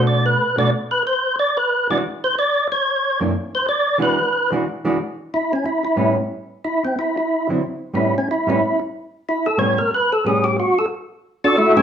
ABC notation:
X:1
M:4/4
L:1/8
Q:"Swing" 1/4=182
K:Amix
V:1 name="Tonewheel organ"
d B2 d z B =c2 | d B2 d z =c d2 | c3 z2 =c d2 | B3 z4 z |
E C E E2 z3 | E =C E E2 z3 | E C E E2 z3 | E A c _B =B A ^G =G |
F A z3 [DFAd] [A,EFA] [CGAc] |]
V:2 name="Hollow-body jazz guitar"
[B,,A,DF]2 z [B,,A,DF] z4 | z3 [E,^G,DF] z4 | z3 [F,,E,^A,D] z4 | [E,^G,DF] z2 [E,G,DF] z [E,G,DF] z2 |
z4 [A,,G,B,C] z3 | z4 z [D,F,=CE] z2 | [A,,G,B,C] z2 [A,,G,B,C] z4 | z2 [A,,G,B,C] z3 [A,,G,B,C]2 |
z6 z [A,,G,B,C] |]